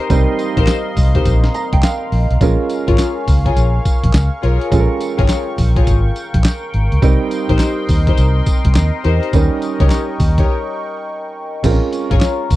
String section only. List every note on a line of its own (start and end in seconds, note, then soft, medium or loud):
0.57 0.67 D#4 medium
0.57 0.67 G4 medium
0.57 0.67 A#4 medium
0.57 0.67 C5 medium
1.14 1.24 D#4 medium
1.14 1.24 G4 medium
1.14 1.25 A#4 medium
1.14 1.25 C5 medium
2.88 2.98 F4 medium
2.88 2.98 G#4 medium
2.88 2.98 A#4 medium
2.88 2.98 C#5 medium
3.45 3.55 F4 medium
3.45 3.55 G#4 medium
3.45 3.55 A#4 medium
3.45 3.55 C#5 medium
4.42 4.59 F4 medium
4.42 4.59 G#4 medium
4.42 4.59 A#4 medium
4.42 4.60 C#5 medium
5.18 5.28 F4 medium
5.18 5.28 G#4 medium
5.18 5.28 A#4 medium
5.18 5.29 C#5 medium
5.76 5.86 F4 medium
5.76 5.86 G#4 medium
5.76 5.86 A#4 medium
5.76 5.86 C#5 medium
7.49 7.59 D#4 medium
7.49 7.59 G4 medium
7.49 7.59 A#4 medium
7.49 7.59 C5 medium
8.07 8.17 D#4 medium
8.07 8.17 G4 medium
8.07 8.17 A#4 medium
8.07 8.17 C5 medium
9.04 9.21 D#4 medium
9.04 9.21 G4 medium
9.04 9.21 A#4 medium
9.04 9.21 C5 medium
9.80 9.90 D#4 medium
9.80 9.90 G4 medium
9.80 9.90 A#4 medium
9.80 9.90 C#5 medium
10.38 10.48 D#4 medium
10.38 10.48 G4 medium
10.38 10.48 A#4 medium
10.38 10.48 C#5 medium
12.11 12.21 F4 medium
12.11 12.21 G#4 medium
12.11 12.21 A#4 medium
12.11 12.21 C#5 medium